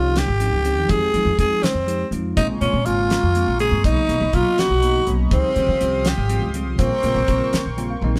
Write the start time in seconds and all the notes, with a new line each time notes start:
Already playing: C2 F3 C4 C#4 D#4 F4 G4
0.16 G4, snare, closed hi-hat
0.28 G#1
0.40 F3 C4 C#4 D#4 G4, closed hi-hat
0.52 C#2
0.64 F3 C4 C#4 D#4 G4, closed hi-hat
0.77 D#2
0.88 F2 F3 G#3 C4 D#4 G4 G#4, kick, closed hi-hat
1.13 F3 G#3 C4 D#4 F4, closed hi-hat
1.25 F2
1.38 F2 F3 G#3 C4 D#4 F4 G#4, kick, closed hi-hat
1.62 C4, muted upright bass stroke, snare, closed hi-hat
1.74 F2
1.87 F3 G#3 C4 D#4 G4, closed hi-hat
2.11 F2 F3 G#3 C4 D#4 F4, closed hi-hat
2.36 A#1 C#3 G#3 A#3 C4 D#4 F4 G#5 A#5 C6 C#6, kick, closed hi-hat
2.61 A#2 C#3 G#3 A#3 C4 C#4 F4, closed hi-hat
2.73 A#2
2.85 G#1 C#3 G#3 A#3 C4 F4, closed hi-hat
3.10 snare, closed hi-hat
3.23 F2
3.35 C#3 G#3 A#3 C4 F4, closed hi-hat
3.47 A#1
3.59 C#3 G#3 A#3 C4 G#4, closed hi-hat
3.72 G2
3.84 B1 C#3 F#3 A#3 B3 D#4 D#5 B5, kick, closed hi-hat
4.09 B2 C#3 F#3 A#3 B3 D#4, closed hi-hat
4.21 B1
4.33 B1 C#3 F#3 A#3 B3 F4, kick, closed hi-hat
4.58 F#4, muted upright bass stroke, snare, closed hi-hat
4.70 B1
4.82 C#3 F#3 A#3 B3 D#4, closed hi-hat
5.06 B1 C#3 F#3 A#3 B3 C#4, closed hi-hat
5.31 C#2 C#3 F3 G3 C4 D#4 G4 F5 C6 D#6, kick, closed hi-hat
5.56 C#3 F3 G3 C4 F4, closed hi-hat
5.68 C#3
5.80 C2 F3 G3 C4 C#4 F4, closed hi-hat
6.05 G4, snare, closed hi-hat
6.17 G#1
6.28 C#3 F3 G3 C4 F4, closed hi-hat
6.42 C#2
6.54 C#3 F3 G3 C4 F4, closed hi-hat
6.66 C2
6.78 A#1 C#3 G3 A#3 C4 F4 A#4 G5 C#6, kick, closed hi-hat
7.03 A#2 C#3 G3 A#3 C4 F4, closed hi-hat
7.15 A#1
7.28 A#1 C#3 G3 A#3 C4 F4, kick, closed hi-hat
7.53 muted upright bass stroke, snare, closed hi-hat
7.66 A#1
7.77 C#3 G3 A#3 C4 F4 G5, closed hi-hat
7.91 F5
8.01 A#1 C#3 G3 A#3 C4 D#4 D#5, high tom
8.16 snare